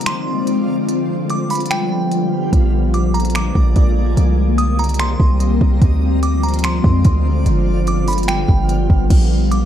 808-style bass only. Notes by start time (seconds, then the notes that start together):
2.53 A#1
3.55 A#1
3.76 A#1
4.17 C2
5.20 C2
5.61 C2
5.82 D2
6.84 F2
7.05 D2
7.46 G1
8.49 G1
8.90 G1
9.10 A#1